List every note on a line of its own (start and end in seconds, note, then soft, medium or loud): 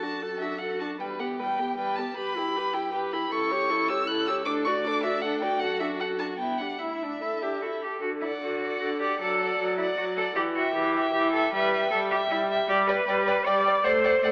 0.00 1.00 F#2 soft
0.00 0.24 D4 soft
0.00 0.24 F#4 soft
0.00 0.38 A5 medium
0.22 0.44 F#4 soft
0.22 0.43 A4 soft
0.39 0.61 D4 soft
0.39 0.60 F#4 soft
0.39 0.60 E5 medium
0.59 0.83 F#4 soft
0.59 0.81 A4 soft
0.59 0.79 F#5 soft
0.79 1.00 D4 soft
0.79 0.99 F#4 soft
0.79 0.88 A5 medium
0.99 2.14 E2 soft
0.99 1.21 G3 soft
0.99 1.20 B4 soft
0.99 1.08 G5 medium
1.19 1.41 B3 soft
1.19 1.41 G4 soft
1.19 1.27 F#5 medium
1.39 1.60 G3 soft
1.39 1.61 B4 soft
1.39 1.76 G5 medium
1.59 1.77 B3 soft
1.59 1.78 G4 soft
1.76 1.99 G3 soft
1.76 2.00 B4 soft
1.76 1.97 G5 medium
1.96 2.16 B3 soft
1.96 2.17 G4 soft
1.96 2.16 A5 medium
2.15 3.28 G2 medium
2.15 2.38 G4 soft
2.15 2.39 B4 medium
2.15 2.75 B5 medium
2.36 2.57 E4 soft
2.36 2.59 G4 soft
2.56 2.75 G4 soft
2.56 2.76 B4 soft
2.73 2.92 E4 soft
2.73 2.93 G4 soft
2.73 2.92 G5 medium
2.92 3.14 G4 soft
2.92 3.15 B4 soft
2.92 3.00 G5 medium
3.12 3.31 E4 soft
3.12 3.31 G4 soft
3.12 3.34 B5 medium
3.31 4.48 C#2 medium
3.31 3.53 E4 soft
3.31 3.52 A4 medium
3.31 3.90 C#6 medium
3.51 3.71 G4 soft
3.51 3.71 C#5 soft
3.70 3.91 E4 medium
3.70 3.92 A4 medium
3.88 4.07 G4 medium
3.88 4.09 C#5 soft
3.88 4.09 E6 medium
4.07 4.29 E4 medium
4.07 4.31 A4 soft
4.07 4.26 F#6 medium
4.27 4.46 G4 medium
4.27 4.48 C#5 soft
4.27 4.34 E6 medium
4.45 5.63 D2 medium
4.45 4.68 D4 medium
4.45 4.68 A4 medium
4.45 4.53 D6 medium
4.65 4.86 F#4 medium
4.65 4.88 D5 medium
4.65 4.73 C#6 medium
4.83 5.05 D4 medium
4.83 5.05 A4 medium
4.83 5.02 D6 medium
5.03 5.22 F#4 medium
5.03 5.23 D5 medium
5.03 5.23 E5 medium
5.21 5.43 D4 soft
5.21 5.44 A4 soft
5.21 5.40 F#5 medium
5.40 5.60 F#4 medium
5.40 5.61 D5 medium
5.40 5.61 G5 medium
5.60 6.41 F#2 medium
5.60 5.82 F#4 medium
5.60 5.83 A4 medium
5.60 5.79 F#5 medium
5.80 6.02 D4 soft
5.80 6.02 F#4 soft
5.80 5.88 E5 medium
6.00 6.21 F#4 medium
6.00 6.22 A4 soft
6.00 6.08 F#5 medium
6.19 6.38 D4 soft
6.19 6.40 F#4 soft
6.19 6.27 A5 medium
6.38 6.80 G2 soft
6.38 6.61 B3 soft
6.38 6.63 E4 soft
6.38 6.60 G5 medium
6.58 6.81 D4 soft
6.58 6.80 G4 soft
6.58 6.80 F#5 medium
6.78 7.40 A2 soft
6.78 7.05 E4 soft
6.78 7.04 E4 soft
6.78 7.81 E5 medium
7.03 7.21 D4 soft
7.03 7.24 D4 soft
7.21 7.44 E4 soft
7.21 7.44 A4 medium
7.41 7.62 D4 soft
7.41 7.49 E4 soft
7.41 7.63 G4 soft
7.61 7.85 E4 soft
7.61 7.69 F#4 soft
7.61 8.01 A4 soft
7.81 8.01 G4 medium
7.81 8.03 A4 soft
8.01 8.37 D3 medium
8.01 8.09 F#4 medium
8.21 8.29 E4 medium
8.21 8.61 D5 soft
8.21 8.60 F#5 soft
8.41 8.76 D3 medium
8.41 8.80 F#4 medium
8.63 9.01 D5 soft
8.63 9.01 F#5 medium
8.80 9.15 D3 medium
8.80 8.88 F#4 medium
8.99 9.19 G4 medium
8.99 9.20 D5 soft
8.99 9.20 F#5 soft
9.20 9.55 F#3 medium
9.20 9.77 A4 medium
9.20 9.40 D5 soft
9.20 9.40 F#5 soft
9.40 9.78 D5 soft
9.40 9.78 F#5 soft
9.59 9.93 F#3 medium
9.77 9.85 E4 medium
9.77 10.17 D5 soft
9.77 10.17 F#5 medium
9.96 10.32 F#3 medium
9.96 10.04 F#4 medium
10.16 10.24 A4 medium
10.16 10.37 D5 medium
10.16 10.37 F#5 medium
10.35 10.70 E3 medium
10.35 10.43 G4 medium
10.54 10.73 F#4 medium
10.54 10.94 E5 medium
10.54 10.94 G5 medium
10.74 11.09 E3 medium
10.74 11.12 G4 medium
10.95 11.34 E5 medium
10.95 11.33 G5 medium
11.13 11.49 E3 medium
11.13 11.32 G4 medium
11.32 11.52 A4 medium
11.32 11.54 E5 medium
11.32 11.51 G5 medium
11.52 11.88 G3 medium
11.52 11.90 B4 medium
11.52 11.73 E5 medium
11.52 11.72 G5 medium
11.73 12.11 E5 medium
11.73 12.10 G5 medium
11.91 12.26 G3 medium
11.91 11.99 A4 medium
12.11 12.19 G4 medium
12.11 12.49 E5 medium
12.11 12.49 G5 medium
12.30 12.64 G3 medium
12.30 12.38 E4 medium
12.50 12.69 E5 medium
12.50 12.68 G5 medium
12.68 13.03 G3 medium
12.68 12.89 G4 loud
12.68 12.78 D5 medium
12.68 12.76 G5 medium
12.87 13.47 B4 loud
12.87 12.96 D5 medium
12.87 12.96 G5 medium
13.07 13.42 G3 medium
13.07 13.16 D5 medium
13.07 13.15 G5 medium
13.27 13.35 D5 medium
13.27 13.35 G5 medium
13.45 13.81 G3 medium
13.45 13.86 D5 loud
13.45 13.54 D5 medium
13.45 13.54 G5 medium
13.65 13.75 D5 medium
13.65 13.73 G5 medium
13.84 14.19 A3 medium
13.84 14.32 C5 loud
13.84 13.93 D5 medium
13.84 13.92 F#5 medium
14.04 14.12 D5 medium
14.04 14.12 F#5 medium
14.23 14.32 A3 medium
14.23 14.31 D5 medium
14.23 14.32 F#5 medium